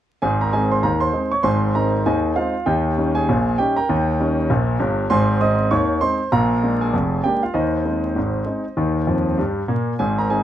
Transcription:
0.22 G#1 G#2 G#4 G#5
0.41 A#4 A#5
0.53 G#3 C4 D#4 G#4 G#5
0.71 C5 C6
0.83 D#2 D#3 A#4 A#5
1.00 C5 C6
1.13 G#3 C4 D#4
1.32 C#5 C#6
1.43 G#1 G#2 C5 G#5 C6
1.75 G#3 C4 D#4 A#4 A#5
2.06 D#2 D#3 G#4 D#5 G#5
2.36 G#3 C4 D#4 F4 F5
2.66 D#2 D#3 G4 D#5 G5
2.97 G3 C#4 D#4
3.15 G#4 G#5
3.29 A#1 A#2
3.58 G3 C#4 D#4 G4 G5
3.76 A#4 G5 A#5
3.89 D#2 D#3
4.20 G3 C#4 D#4
4.50 A#1 A#2
4.80 G1 G2
5.10 G#1 G#2 C5 G#5 C6
5.41 G#3 C4 D#4 D#5 D#6
5.71 D#2 D#3 C#5 C#6
6.01 G#3 C4 D#4 C5 C6
6.32 A#1 A#2 A#4 F5 A#5
6.63 G#3 A#3 D4
6.81 G#4 G#5
6.93 F1 F2
7.24 G#3 A#3 D4 G4 G5
7.43 F4 F5
7.54 D#2 D#3 D#4 C5 D#5
7.85 G#3 C4 D#4
8.16 G#1 G#2
8.46 G#3 C4 D#4
8.77 D#2 D#3
9.07 F2 F3
9.38 G2 G3
9.68 A#2 A#3
9.99 G#1 G#2 G#4 G#5
10.18 A#4 A#5
10.30 G#3 C4 D#4 G#4 G#5

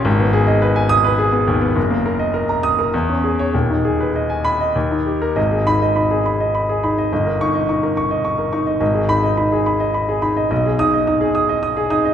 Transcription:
0.05 G#1
0.20 B3
0.33 G#4
0.47 D#5
0.62 B4
0.76 G#5
0.89 D#6
1.04 B4
1.18 G#4
1.32 B3
1.47 D#2
1.61 B3
1.76 F#1
1.90 A#3
2.06 A#4
2.19 D#5
2.34 A#4
2.49 A#5
2.63 D#6
2.79 A#4
2.94 E2
3.09 C#4
3.24 G#4
3.39 C#5
3.53 D#1 D#2
3.70 D#4
3.85 G#4
4.00 B4
4.16 D#5
4.30 G#5
4.45 B5
4.60 D#5
4.75 D#2
4.91 D#4
5.06 G4
5.22 A#4
5.36 G#1 D#5
5.51 G#4
5.67 D#4 B5
5.82 D#5
5.96 D#4 B5
6.11 G#4
6.26 B5
6.40 D#5
6.55 B5
6.69 G#4
6.83 D#4 B5
6.98 D#5
7.13 G1 D#5
7.27 A#4
7.41 D#4 C#6
7.55 D#5
7.69 D#4 C#6
7.83 A#4
7.97 C#6
8.11 D#5
8.25 C#6
8.38 A#4
8.53 D#4 C#6
8.67 D#5
8.81 G#1 D#5
8.94 G#4
9.09 D#4 B5
9.23 D#5
9.37 D#4 B5
9.52 G#4
9.66 B5
9.80 D#5
9.94 B5
10.09 G#4
10.22 D#4 B5
10.37 D#5
10.51 B1 D#5
10.66 G#4
10.79 D#4 D#6
10.94 D#5
11.07 D#4 D#6
11.21 G#4
11.35 D#6
11.49 D#5
11.63 D#6
11.77 G#4
11.90 D#4 D#6
12.05 D#5

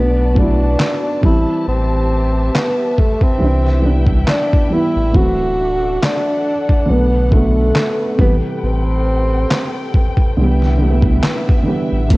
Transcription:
Already playing: B1 F#3 A3 B3 D4 F#4 B4 D5 A5
0.35 F#3 A3 D4, kick
0.39 B3 E4
0.80 snare, clap
1.21 A1 E3 G3 G4 B4 E5, kick
1.25 C4 E4 B4
1.68 A1 C4
2.55 B3, snare, clap
2.98 A3, kick
3.21 C4, kick
3.38 C2 E3 G3 E4 B4 G5
3.44 D4
3.67 snare
3.80 E3 G3
3.84 B3 D4
4.06 kick
4.27 D4, snare, clap
4.53 kick
4.68 E3 G3
4.72 B3 E4
4.96 A1
5.11 D1 E3 F#3 A3 D4 A4 F#5, kick
5.16 C4 F#4
6.03 D4, snare, clap
6.69 kick
6.86 B1 D3 F#3 B4
6.90 A3 B3
7.31 D3 F#3 A3, kick
7.35 A3 B3
7.75 snare, clap
8.17 A1 C3 E3 B3 G5, kick
8.21 G3 B4
8.63 A1 C4
9.51 snare, clap
9.94 kick
10.17 kick
10.36 C2 D3 E3 E4 B4 E5
10.41 G3 B3
10.62 snare
10.78 D3 E3
10.82 G3 A3
10.91 B3
11.02 kick
11.23 snare, clap
11.49 kick
11.63 D3 E3
11.68 G3 B3
11.92 A1
12.09 D1 E3 F#3 D4 A4 F#5, kick, closed hi-hat
12.13 A3

